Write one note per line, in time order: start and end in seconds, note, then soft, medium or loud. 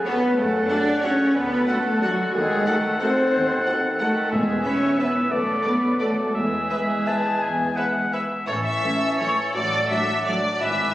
0.00 0.12 C#3 medium
0.00 0.11 A4 medium
0.00 0.13 F#5 medium
0.05 0.35 B3 loud
0.05 0.36 B3 medium
0.05 0.15 F#4 medium
0.05 0.15 A4 medium
0.05 0.35 B4 medium
0.05 0.36 B4 medium
0.05 0.14 C#5 medium
0.37 0.64 F#2 medium
0.37 0.99 C#3 medium
0.37 0.69 A3 medium
0.37 0.70 A3 medium
0.37 0.69 A4 medium
0.37 0.99 A4 medium
0.37 0.70 A4 medium
0.37 0.99 F#5 medium
0.69 1.03 D4 loud
0.69 1.04 D4 medium
0.69 0.79 F#4 medium
0.69 0.79 A4 medium
0.69 1.03 D5 medium
0.69 0.77 F#5 medium
1.03 1.35 C#3 medium
1.03 1.35 C#4 medium
1.03 1.12 F#4 medium
1.03 1.12 A4 medium
1.03 1.35 A4 medium
1.03 1.35 C#5 medium
1.03 1.11 F#5 medium
1.03 1.35 F#5 medium
1.35 1.62 D2 medium
1.35 1.67 D3 medium
1.35 1.68 B3 loud
1.35 1.68 B3 medium
1.35 1.67 A4 medium
1.35 1.68 B4 medium
1.35 1.67 B4 medium
1.35 1.67 F#5 medium
1.67 2.01 D3 medium
1.67 2.01 A3 medium
1.67 2.02 A3 medium
1.67 1.77 F#4 medium
1.67 2.01 A4 medium
1.67 2.02 A4 medium
1.67 2.01 A4 medium
1.67 1.77 A4 medium
1.67 1.75 F#5 medium
1.67 2.01 F#5 medium
2.01 2.36 D3 medium
2.01 2.34 F#3 medium
2.01 2.33 F#4 medium
2.01 2.34 F#4 medium
2.01 2.12 F#4 medium
2.01 2.33 A4 medium
2.01 2.12 A4 medium
2.01 2.10 F#5 medium
2.01 2.33 F#5 medium
2.33 2.61 D#2 medium
2.33 2.67 D#3 medium
2.33 2.66 G#3 medium
2.33 2.67 G#4 medium
2.33 2.67 A4 medium
2.33 2.66 F#5 medium
2.66 3.01 D#3 medium
2.66 3.01 A3 medium
2.66 2.76 F#4 medium
2.66 3.01 A4 medium
2.66 2.76 A4 medium
2.66 3.00 F#5 medium
2.66 2.74 F#5 medium
3.00 3.98 D#3 medium
3.00 3.83 C4 medium
3.00 3.82 C4 medium
3.00 3.10 F#4 medium
3.00 3.10 A4 medium
3.00 3.99 A4 medium
3.00 3.83 C5 medium
3.00 3.70 C5 medium
3.00 3.08 F#5 medium
3.00 3.98 F#5 medium
3.34 3.61 D#2 medium
3.66 3.74 F#4 medium
3.66 3.74 A4 medium
3.66 3.74 F#5 medium
3.99 4.32 D#3 medium
3.99 4.30 A3 medium
3.99 4.08 F#4 medium
3.99 4.30 A4 medium
3.99 4.08 A4 medium
3.99 4.32 A4 medium
3.99 4.30 A4 medium
3.99 4.07 F#5 soft
3.99 4.31 F#5 medium
4.31 4.78 E2 medium
4.31 4.59 E2 medium
4.31 4.95 E3 medium
4.31 4.65 G#3 medium
4.31 4.64 G#4 medium
4.31 4.65 G#4 medium
4.31 4.95 B4 medium
4.31 4.95 E5 medium
4.64 4.99 C#4 medium
4.64 4.74 B4 medium
4.64 4.98 C#5 medium
4.64 4.72 E5 medium
4.98 5.33 E3 medium
4.98 5.31 B3 medium
4.98 5.32 B3 medium
4.98 5.30 B4 medium
4.98 5.32 B4 medium
4.98 5.08 B4 medium
4.98 5.31 B4 medium
4.98 5.33 E5 medium
4.98 5.07 E5 soft
5.31 5.59 F#2 medium
5.31 5.99 F#3 medium
5.31 5.64 A3 medium
5.31 5.65 A3 medium
5.31 5.98 A4 medium
5.31 5.64 A4 medium
5.31 5.65 A4 medium
5.31 5.99 D5 soft
5.63 6.00 B3 medium
5.63 5.73 A4 soft
5.63 5.99 B4 medium
5.63 6.00 B4 medium
5.63 5.71 D5 soft
5.63 5.72 D5 soft
5.99 6.34 F#3 soft
5.99 6.34 A3 medium
5.99 6.08 A4 soft
5.99 6.35 A4 soft
5.99 6.34 A4 medium
5.99 6.07 D5 soft
5.99 6.34 D5 soft
5.99 6.08 D5 soft
6.34 6.64 E2 soft
6.34 8.27 E3 soft
6.34 8.13 G#3 soft
6.34 8.10 G#3 medium
6.34 8.10 G#4 medium
6.34 8.14 G#4 medium
6.34 8.31 B4 soft
6.34 6.65 E5 soft
6.70 6.78 B4 soft
6.70 7.09 E5 medium
6.70 6.78 E5 soft
7.06 7.16 B4 soft
7.06 7.14 E5 soft
7.06 7.43 A5 medium
7.42 7.71 E2 soft
7.42 7.78 G#5 medium
7.76 7.85 B4 soft
7.76 7.85 E5 soft
7.76 8.15 F#5 soft
8.13 8.21 B4 soft
8.13 8.21 E5 soft
8.13 8.47 E5 soft
8.47 8.78 A1 soft
8.47 8.77 A2 medium
8.47 9.56 E3 soft
8.47 10.43 A4 soft
8.47 8.54 C#5 medium
8.47 9.50 C#6 soft
8.64 9.18 E5 medium
8.83 8.91 E3 soft
8.83 8.91 A3 soft
8.83 8.98 A3 soft
8.83 9.17 C#4 soft
8.83 8.92 C#4 soft
8.83 8.98 C#4 soft
8.83 8.92 A4 soft
9.18 9.28 E3 soft
9.18 9.29 A3 soft
9.18 9.34 A3 soft
9.18 9.28 C#4 soft
9.18 9.34 C#4 soft
9.18 9.54 E4 soft
9.18 9.28 A4 soft
9.18 9.53 C#5 medium
9.54 9.84 A1 soft
9.54 9.84 A2 medium
9.54 10.62 F#3 soft
9.54 9.89 F#4 soft
9.54 9.89 D5 medium
9.54 10.59 D6 soft
9.89 10.02 F#3 soft
9.89 9.99 F#3 soft
9.89 9.98 A3 soft
9.89 10.03 D4 soft
9.89 9.98 D4 soft
9.89 10.94 D4 medium
9.89 9.98 A4 soft
9.89 10.25 E5 medium
10.25 10.38 F#3 soft
10.25 10.35 F#3 soft
10.25 10.35 A3 soft
10.25 10.38 D4 soft
10.25 10.34 D4 soft
10.25 10.34 A4 soft
10.25 10.60 D5 medium
10.60 10.89 G#1 medium
10.60 10.89 G#2 medium
10.60 10.94 E3 soft
10.60 10.94 B4 soft
10.60 10.94 E5 medium
10.60 10.94 D6 soft